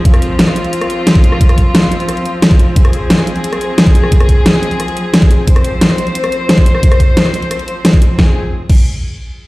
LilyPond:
<<
  \new Staff \with { instrumentName = "String section" } { \time 4/4 \key f \minor \tempo 4 = 177 << { f'1~ | f'1 | aes'1~ | aes'1 |
c''1~ | c''1 | <f c' aes'>8 r2. r8 | } \\ { <f c'>1~ | <f c'>1~ | <f c'>1~ | <f c'>1~ |
<f c'>1~ | <f c'>1 | r1 | } >> }
  \new DrumStaff \with { instrumentName = "Drums" } \drummode { \time 4/4 <hh bd>16 <hh ss>16 hh8 <hh sn>16 ss16 hh16 hh16 hh16 <hh ss>16 hh8 <hh sn>16 <hh bd>16 hh16 ss16 | <hh bd>16 <hh ss>16 <hh bd>8 <hh sn>8 hh16 hh16 <hh ss>16 hh16 hh8 <hh sn>16 <hh bd>16 hh8 | <hh bd>16 <hh ss>16 hh8 <hh sn>16 ss16 hh16 hh16 hh16 <hh ss>16 hh8 <hh sn>16 <hh bd>16 hh16 ss16 | <hh bd>16 <hh ss>16 <hh bd>8 <hh sn>8 hh16 hh16 <hh ss>16 hh16 hh8 <hh sn>16 <hh bd>16 hh8 |
<hh bd>16 <hh ss>16 hh8 <hh sn>16 ss16 hh16 hh16 hh16 <hh ss>16 hh8 <hh sn>16 <hh bd>16 hh16 ss16 | <hh bd>16 <hh ss>16 <hh bd>8 <hh sn>16 ss16 hh16 hh16 <hh ss>16 hh16 hh8 <hh sn>16 <hh bd>16 hh8 | <bd sn>4 r8 <cymc bd>8 r4 r4 | }
>>